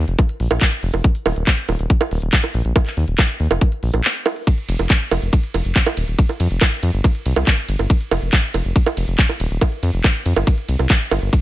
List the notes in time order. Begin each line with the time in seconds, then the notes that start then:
0.08 F1, closed hi-hat
0.19 kick, closed hi-hat, high bongo
0.29 closed hi-hat
0.40 A#1, open hi-hat
0.51 A#1, closed hi-hat, high bongo
0.61 kick, clap, closed hi-hat
0.72 closed hi-hat
0.83 F1, open hi-hat
0.94 F1, open hi-hat, high bongo
1.04 kick, closed hi-hat
1.15 closed hi-hat
1.26 D#1, open hi-hat, high bongo
1.36 D#1, closed hi-hat
1.47 kick, clap, closed hi-hat
1.58 closed hi-hat
1.69 D#1, open hi-hat, high bongo
1.79 D#1, closed hi-hat
1.90 kick, closed hi-hat
2.01 closed hi-hat, high bongo
2.11 D#1, open hi-hat
2.22 D#1, closed hi-hat
2.33 kick, clap, closed hi-hat
2.44 closed hi-hat, high bongo
2.54 A#1, open hi-hat
2.65 A#1, closed hi-hat
2.76 kick, closed hi-hat, high bongo
2.86 clap, closed hi-hat
2.97 D#2, open hi-hat
3.08 D#1, closed hi-hat
3.19 kick, clap, closed hi-hat, high bongo
3.29 closed hi-hat
3.40 D#2, open hi-hat
3.51 F1, closed hi-hat, high bongo
3.61 kick, closed hi-hat
3.72 closed hi-hat
3.83 A#1, open hi-hat
3.94 A#1, closed hi-hat, high bongo
4.04 clap, closed hi-hat
4.15 closed hi-hat
4.26 open hi-hat, high bongo
4.36 open hi-hat
4.47 kick, closed hi-hat, ride
4.58 closed hi-hat
4.69 F1, open hi-hat, ride
4.79 F1, closed hi-hat, high bongo
4.90 kick, clap, closed hi-hat, ride
5.01 closed hi-hat
5.11 F1, open hi-hat, ride, high bongo
5.22 F1, closed hi-hat
5.33 kick, closed hi-hat, ride
5.44 closed hi-hat
5.54 F1, open hi-hat, ride, high bongo
5.65 F1, closed hi-hat
5.76 kick, clap, closed hi-hat, ride
5.86 closed hi-hat, high bongo
5.97 D#1, open hi-hat, ride
6.08 D#1, closed hi-hat
6.19 kick, closed hi-hat, ride
6.29 closed hi-hat, high bongo
6.40 F2, open hi-hat, ride
6.51 F1, closed hi-hat
6.61 kick, clap, closed hi-hat, ride, high bongo
6.72 closed hi-hat
6.83 F2, open hi-hat, ride
6.94 G1, closed hi-hat
7.04 kick, closed hi-hat, ride, high bongo
7.15 closed hi-hat
7.26 C2, open hi-hat, ride
7.36 C2, high bongo
7.47 kick, clap, closed hi-hat, ride
7.58 closed hi-hat
7.69 G1, open hi-hat, ride
7.79 G1, open hi-hat, high bongo
7.90 kick, closed hi-hat, ride
8.01 closed hi-hat
8.11 F1, open hi-hat, ride, high bongo
8.22 F1, closed hi-hat
8.33 kick, clap, closed hi-hat, ride
8.44 closed hi-hat
8.54 F1, open hi-hat, ride, high bongo
8.65 F1, closed hi-hat
8.76 kick, closed hi-hat, ride
8.86 closed hi-hat, high bongo
8.97 F1, open hi-hat, ride
9.08 F1, closed hi-hat
9.19 kick, clap, closed hi-hat, ride
9.29 closed hi-hat, high bongo
9.40 D#1, open hi-hat, ride
9.51 D#1, closed hi-hat
9.61 kick, closed hi-hat, ride, high bongo
9.72 closed hi-hat
9.83 F2, open hi-hat, ride
9.94 F1, closed hi-hat
10.04 kick, clap, closed hi-hat, ride, high bongo
10.15 closed hi-hat
10.26 F2, open hi-hat, ride
10.36 G1, closed hi-hat, high bongo
10.47 kick, closed hi-hat, ride
10.58 closed hi-hat
10.69 C2, open hi-hat, ride
10.79 C2, closed hi-hat, high bongo
10.90 kick, clap, closed hi-hat, ride
11.01 closed hi-hat
11.11 G1, open hi-hat, ride, high bongo
11.22 G1, open hi-hat
11.33 kick, closed hi-hat, ride